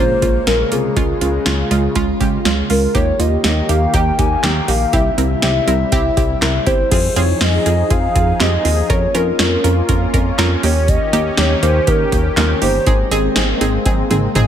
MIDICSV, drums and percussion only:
0, 0, Header, 1, 2, 480
1, 0, Start_track
1, 0, Key_signature, -4, "minor"
1, 0, Tempo, 495868
1, 933, Time_signature, 4, 2, 24, 8
1, 14007, End_track
2, 0, Start_track
2, 0, Title_t, "Drums"
2, 215, Note_on_c, 9, 36, 89
2, 216, Note_on_c, 9, 42, 71
2, 312, Note_off_c, 9, 36, 0
2, 313, Note_off_c, 9, 42, 0
2, 455, Note_on_c, 9, 38, 101
2, 455, Note_on_c, 9, 42, 70
2, 551, Note_off_c, 9, 42, 0
2, 552, Note_off_c, 9, 38, 0
2, 694, Note_on_c, 9, 42, 70
2, 790, Note_off_c, 9, 42, 0
2, 934, Note_on_c, 9, 36, 107
2, 934, Note_on_c, 9, 42, 69
2, 1030, Note_off_c, 9, 36, 0
2, 1031, Note_off_c, 9, 42, 0
2, 1175, Note_on_c, 9, 42, 79
2, 1272, Note_off_c, 9, 42, 0
2, 1411, Note_on_c, 9, 38, 113
2, 1415, Note_on_c, 9, 42, 67
2, 1508, Note_off_c, 9, 38, 0
2, 1511, Note_off_c, 9, 42, 0
2, 1656, Note_on_c, 9, 42, 69
2, 1752, Note_off_c, 9, 42, 0
2, 1892, Note_on_c, 9, 42, 70
2, 1893, Note_on_c, 9, 36, 85
2, 1989, Note_off_c, 9, 42, 0
2, 1990, Note_off_c, 9, 36, 0
2, 2134, Note_on_c, 9, 36, 91
2, 2135, Note_on_c, 9, 42, 73
2, 2231, Note_off_c, 9, 36, 0
2, 2232, Note_off_c, 9, 42, 0
2, 2374, Note_on_c, 9, 42, 69
2, 2375, Note_on_c, 9, 38, 98
2, 2471, Note_off_c, 9, 42, 0
2, 2472, Note_off_c, 9, 38, 0
2, 2612, Note_on_c, 9, 46, 72
2, 2709, Note_off_c, 9, 46, 0
2, 2853, Note_on_c, 9, 36, 105
2, 2853, Note_on_c, 9, 42, 70
2, 2949, Note_off_c, 9, 36, 0
2, 2950, Note_off_c, 9, 42, 0
2, 3094, Note_on_c, 9, 42, 78
2, 3191, Note_off_c, 9, 42, 0
2, 3329, Note_on_c, 9, 38, 115
2, 3333, Note_on_c, 9, 42, 66
2, 3426, Note_off_c, 9, 38, 0
2, 3429, Note_off_c, 9, 42, 0
2, 3574, Note_on_c, 9, 42, 70
2, 3670, Note_off_c, 9, 42, 0
2, 3810, Note_on_c, 9, 42, 74
2, 3812, Note_on_c, 9, 36, 84
2, 3907, Note_off_c, 9, 42, 0
2, 3909, Note_off_c, 9, 36, 0
2, 4053, Note_on_c, 9, 36, 91
2, 4054, Note_on_c, 9, 42, 71
2, 4150, Note_off_c, 9, 36, 0
2, 4150, Note_off_c, 9, 42, 0
2, 4292, Note_on_c, 9, 42, 70
2, 4293, Note_on_c, 9, 38, 97
2, 4293, Note_on_c, 9, 39, 82
2, 4389, Note_off_c, 9, 42, 0
2, 4390, Note_off_c, 9, 38, 0
2, 4390, Note_off_c, 9, 39, 0
2, 4532, Note_on_c, 9, 46, 74
2, 4629, Note_off_c, 9, 46, 0
2, 4773, Note_on_c, 9, 36, 107
2, 4773, Note_on_c, 9, 42, 68
2, 4869, Note_off_c, 9, 36, 0
2, 4870, Note_off_c, 9, 42, 0
2, 5015, Note_on_c, 9, 42, 79
2, 5111, Note_off_c, 9, 42, 0
2, 5250, Note_on_c, 9, 38, 116
2, 5253, Note_on_c, 9, 42, 68
2, 5347, Note_off_c, 9, 38, 0
2, 5350, Note_off_c, 9, 42, 0
2, 5494, Note_on_c, 9, 42, 72
2, 5591, Note_off_c, 9, 42, 0
2, 5731, Note_on_c, 9, 42, 74
2, 5732, Note_on_c, 9, 36, 86
2, 5828, Note_off_c, 9, 42, 0
2, 5829, Note_off_c, 9, 36, 0
2, 5974, Note_on_c, 9, 36, 93
2, 5974, Note_on_c, 9, 42, 73
2, 6071, Note_off_c, 9, 36, 0
2, 6071, Note_off_c, 9, 42, 0
2, 6213, Note_on_c, 9, 42, 67
2, 6214, Note_on_c, 9, 38, 103
2, 6214, Note_on_c, 9, 39, 83
2, 6310, Note_off_c, 9, 42, 0
2, 6311, Note_off_c, 9, 38, 0
2, 6311, Note_off_c, 9, 39, 0
2, 6452, Note_on_c, 9, 42, 69
2, 6453, Note_on_c, 9, 36, 88
2, 6549, Note_off_c, 9, 36, 0
2, 6549, Note_off_c, 9, 42, 0
2, 6693, Note_on_c, 9, 36, 109
2, 6693, Note_on_c, 9, 49, 100
2, 6694, Note_on_c, 9, 42, 72
2, 6790, Note_off_c, 9, 36, 0
2, 6790, Note_off_c, 9, 49, 0
2, 6791, Note_off_c, 9, 42, 0
2, 6934, Note_on_c, 9, 42, 81
2, 7031, Note_off_c, 9, 42, 0
2, 7171, Note_on_c, 9, 38, 118
2, 7174, Note_on_c, 9, 42, 68
2, 7267, Note_off_c, 9, 38, 0
2, 7271, Note_off_c, 9, 42, 0
2, 7415, Note_on_c, 9, 42, 75
2, 7511, Note_off_c, 9, 42, 0
2, 7651, Note_on_c, 9, 42, 74
2, 7653, Note_on_c, 9, 36, 90
2, 7748, Note_off_c, 9, 42, 0
2, 7750, Note_off_c, 9, 36, 0
2, 7894, Note_on_c, 9, 36, 91
2, 7895, Note_on_c, 9, 42, 77
2, 7991, Note_off_c, 9, 36, 0
2, 7992, Note_off_c, 9, 42, 0
2, 8133, Note_on_c, 9, 42, 69
2, 8134, Note_on_c, 9, 38, 101
2, 8134, Note_on_c, 9, 39, 84
2, 8230, Note_off_c, 9, 42, 0
2, 8231, Note_off_c, 9, 38, 0
2, 8231, Note_off_c, 9, 39, 0
2, 8373, Note_on_c, 9, 46, 72
2, 8470, Note_off_c, 9, 46, 0
2, 8613, Note_on_c, 9, 36, 112
2, 8614, Note_on_c, 9, 42, 72
2, 8710, Note_off_c, 9, 36, 0
2, 8711, Note_off_c, 9, 42, 0
2, 8854, Note_on_c, 9, 42, 81
2, 8951, Note_off_c, 9, 42, 0
2, 9090, Note_on_c, 9, 38, 118
2, 9093, Note_on_c, 9, 42, 67
2, 9187, Note_off_c, 9, 38, 0
2, 9190, Note_off_c, 9, 42, 0
2, 9335, Note_on_c, 9, 42, 74
2, 9432, Note_off_c, 9, 42, 0
2, 9571, Note_on_c, 9, 42, 77
2, 9572, Note_on_c, 9, 36, 86
2, 9668, Note_off_c, 9, 42, 0
2, 9669, Note_off_c, 9, 36, 0
2, 9814, Note_on_c, 9, 36, 94
2, 9814, Note_on_c, 9, 42, 73
2, 9911, Note_off_c, 9, 36, 0
2, 9911, Note_off_c, 9, 42, 0
2, 10054, Note_on_c, 9, 42, 71
2, 10055, Note_on_c, 9, 38, 103
2, 10055, Note_on_c, 9, 39, 82
2, 10151, Note_off_c, 9, 38, 0
2, 10151, Note_off_c, 9, 39, 0
2, 10151, Note_off_c, 9, 42, 0
2, 10294, Note_on_c, 9, 46, 73
2, 10390, Note_off_c, 9, 46, 0
2, 10533, Note_on_c, 9, 36, 112
2, 10534, Note_on_c, 9, 42, 74
2, 10630, Note_off_c, 9, 36, 0
2, 10631, Note_off_c, 9, 42, 0
2, 10775, Note_on_c, 9, 42, 84
2, 10872, Note_off_c, 9, 42, 0
2, 11010, Note_on_c, 9, 38, 117
2, 11014, Note_on_c, 9, 42, 67
2, 11107, Note_off_c, 9, 38, 0
2, 11111, Note_off_c, 9, 42, 0
2, 11255, Note_on_c, 9, 42, 75
2, 11352, Note_off_c, 9, 42, 0
2, 11493, Note_on_c, 9, 36, 89
2, 11493, Note_on_c, 9, 42, 76
2, 11590, Note_off_c, 9, 36, 0
2, 11590, Note_off_c, 9, 42, 0
2, 11734, Note_on_c, 9, 36, 92
2, 11735, Note_on_c, 9, 42, 73
2, 11831, Note_off_c, 9, 36, 0
2, 11832, Note_off_c, 9, 42, 0
2, 11973, Note_on_c, 9, 42, 70
2, 11974, Note_on_c, 9, 38, 99
2, 11974, Note_on_c, 9, 39, 83
2, 12070, Note_off_c, 9, 42, 0
2, 12071, Note_off_c, 9, 38, 0
2, 12071, Note_off_c, 9, 39, 0
2, 12213, Note_on_c, 9, 46, 73
2, 12310, Note_off_c, 9, 46, 0
2, 12453, Note_on_c, 9, 36, 108
2, 12453, Note_on_c, 9, 42, 71
2, 12550, Note_off_c, 9, 36, 0
2, 12550, Note_off_c, 9, 42, 0
2, 12695, Note_on_c, 9, 42, 83
2, 12792, Note_off_c, 9, 42, 0
2, 12930, Note_on_c, 9, 38, 116
2, 12933, Note_on_c, 9, 42, 67
2, 13027, Note_off_c, 9, 38, 0
2, 13030, Note_off_c, 9, 42, 0
2, 13175, Note_on_c, 9, 42, 76
2, 13272, Note_off_c, 9, 42, 0
2, 13412, Note_on_c, 9, 42, 77
2, 13413, Note_on_c, 9, 36, 90
2, 13414, Note_on_c, 9, 48, 61
2, 13509, Note_off_c, 9, 36, 0
2, 13509, Note_off_c, 9, 42, 0
2, 13511, Note_off_c, 9, 48, 0
2, 13653, Note_on_c, 9, 47, 75
2, 13655, Note_on_c, 9, 42, 75
2, 13750, Note_off_c, 9, 47, 0
2, 13751, Note_off_c, 9, 42, 0
2, 13894, Note_on_c, 9, 42, 71
2, 13894, Note_on_c, 9, 45, 91
2, 13990, Note_off_c, 9, 42, 0
2, 13990, Note_off_c, 9, 45, 0
2, 14007, End_track
0, 0, End_of_file